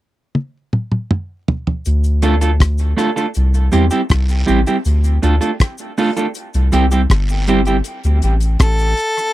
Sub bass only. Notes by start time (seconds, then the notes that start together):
1.87 D2
3.37 C2
3.73 E2
4.11 C2
4.49 A1
4.86 D2
5.23 D2
6.55 C2
6.73 C2
7.11 G1
8.05 D2
8.23 A1
8.60 A1